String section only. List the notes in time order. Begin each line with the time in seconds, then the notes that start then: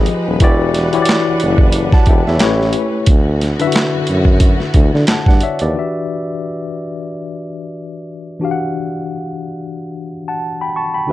Already playing: F3 G#3 D#4 B4
0.40 E3 D4 F#5
2.40 A3 C#4
3.07 D3 B3 F#4